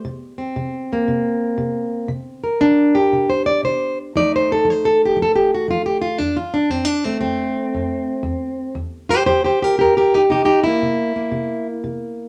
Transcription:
0.05 C3
0.38 C4
0.56 C3
0.93 A#3
1.08 C3
1.58 C3
2.08 C3
2.44 A#4
2.60 C3 D4
2.95 G4
3.13 C3
3.30 C5
3.46 D5
3.63 C3 C5
4.16 F3 A3 D#4 D5
4.36 C5
4.52 A4
4.65 F3
4.70 C5
4.85 A4
5.05 G4
5.16 F3
5.22 A4
5.36 G4
5.54 F#4
5.68 F3 F4
5.86 G4
6.01 F4
6.18 F2 D4
6.37 F4
6.54 D4
6.70 F2 C4
6.85 D4
7.04 A3 C4
7.21 F2 C4
7.75 F2
8.23 E2
8.75 E2
9.09 G4 C5
9.26 E2 G4 C5
9.44 G4 C5
9.62 G4 A#4
9.78 E2 G4 A#4
9.97 G4 A#4
10.14 D#4 G4
10.30 C3 D#4 G4
10.45 D#4 G4
10.64 A#3 E4
10.82 C3
11.16 A#3
11.32 C3
11.84 C3

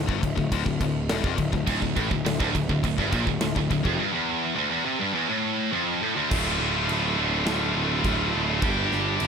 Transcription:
0.07 G1 G2, kick
0.21 D1 D2, kick, crash
0.36 D1 D2, kick
0.52 D1 D2, kick, crash
0.65 D1 D2, kick
0.81 D1 D2, kick, crash
1.09 E1 E2, snare, crash
1.23 F1 F2, kick
1.37 D1 D2, kick, crash
1.52 D1 D2, kick
1.66 D1 D2, kick, crash
1.82 D1 D2, kick
1.96 A1 A2, kick, crash
2.11 D1 D2, kick
2.25 D1 D2, snare, crash
2.39 D1 D2, kick
2.55 D1 D2, kick, crash
2.69 D1 D2, kick
2.83 D1 D2, kick, crash
2.98 G1 G2, kick
3.11 A#1 A#2, kick, crash
3.27 D1 D2, kick
3.41 D1 D2, snare, crash
3.55 D1 D2, kick
3.70 D1 D2, kick, crash
3.83 F1 F2, kick
3.99 G2
4.12 E2
4.55 D2
4.70 E2
4.85 C3
5.00 G2
5.13 E2
5.29 A2
5.72 F2
6.03 A2
6.16 D2
6.29 D1 D2 A2 A3 F4, kick, crash
6.34 D3 A3
6.38 F4
6.44 A3 F4
6.53 A3 F4
6.60 D1 A3 F4
6.68 A3 F4
6.75 A3 F4
6.84 A3 F4
6.89 D1 A3 F4, crash
6.98 A3 F4
7.06 A3 F4
7.14 D3 A3 F4
7.19 D1 D2 A2 A3
7.23 F4
7.30 A3 F4
7.38 A3 F4
7.45 D1 A3 F4, snare, crash
7.54 A3 F4
7.61 A3 F4
7.69 A3 F4
7.75 D1 A3 F4
7.84 A3 F4
7.92 A3 F4
8.00 A3 F4
8.04 D1, kick, crash
8.08 A3 F4
8.15 A3 F4
8.23 A3 F4
8.30 A3 F4
8.35 D1
8.39 A3 F4
8.46 A3 F4
8.55 A3 F4
8.61 G1 G2 D3 G3 D4 G4, kick, crash
8.70 D4 G4
8.77 D4 G4
8.85 D4 G4
8.92 G1 D4 G4, snare
9.00 D4 G4
9.09 D4 G4
9.16 D4 G4, crash
9.22 G1

